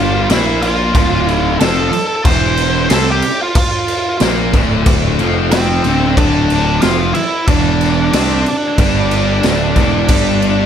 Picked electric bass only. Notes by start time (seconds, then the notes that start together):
Already playing: G1
0.30 A#1
0.95 D1
1.61 F1
1.93 muted picked electric bass stroke
2.25 E1
2.91 C2
4.21 A#1
4.54 D1
5.19 F1
5.85 D1
6.17 D1
6.83 F1
7.16 muted picked electric bass stroke
7.48 E1
8.13 C2
8.79 G1
9.44 D1
9.76 E1
10.09 G1